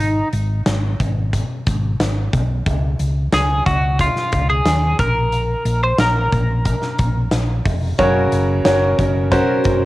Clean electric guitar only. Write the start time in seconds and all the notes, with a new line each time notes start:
Already playing: D#4
3.34 G#4
3.66 F#4
4.01 F4
4.50 G#4
5.00 A#4
5.84 C5
6.00 A#4